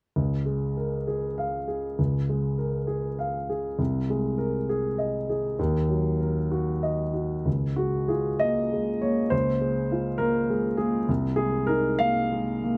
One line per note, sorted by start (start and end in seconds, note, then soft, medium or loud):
0.16 1.95 C#2 soft
0.46 0.95 G#3 soft
0.77 1.26 A#4 soft
1.07 1.56 G#4 soft
1.38 1.86 F5 soft
1.68 2.16 G#4 soft
1.99 3.76 C#2 soft
2.29 2.78 G#3 soft
2.58 3.07 A#4 soft
2.87 3.36 G#4 soft
3.19 3.67 F5 soft
3.50 3.79 G#4 soft
3.79 5.54 C2 soft
4.10 4.57 G#3 soft
4.38 4.86 A#4 soft
4.69 5.17 G#4 soft
4.98 5.46 D#5 soft
5.29 5.59 G#4 soft
5.59 7.43 D#2 soft
5.89 6.38 F#3 soft
6.21 6.70 A#4 soft
6.51 7.02 F#4 soft
6.83 7.34 D#5 soft
7.14 7.46 F#4 soft
7.46 9.28 C#2 soft
7.76 8.29 G#3 soft
7.76 8.09 F#4 soft
8.08 8.60 F4 soft
8.08 8.41 G#4 soft
8.40 8.90 A#3 soft
8.40 9.01 D#5 medium
8.73 9.20 G#3 soft
9.02 9.50 A#3 soft
9.02 9.32 C#5 medium
9.30 11.05 C#2 soft
9.30 10.19 C5 medium
9.61 10.08 G#3 soft
9.92 10.38 F4 soft
10.18 10.67 A#3 soft
10.18 10.78 A#4 medium
10.50 10.97 G#3 soft
10.77 11.09 A#3 soft
10.77 11.08 G#4 medium
11.09 12.77 C2 soft
11.36 11.89 G#3 soft
11.36 11.69 G#4 medium
11.67 12.20 D#4 soft
11.67 12.01 A#4 medium
11.99 12.51 A#3 soft
11.99 12.77 F5 medium
12.32 12.77 G#3 soft
12.64 12.77 A#3 soft